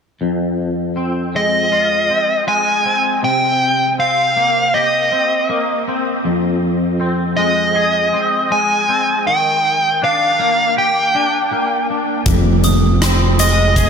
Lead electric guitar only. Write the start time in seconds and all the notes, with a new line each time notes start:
1.36 D#5
2.48 G#5
3.24 G5
4.00 F5
4.74 D#5
7.37 D#5
8.52 G#5
9.27 G5
10.04 F5
10.78 G5
13.40 D#5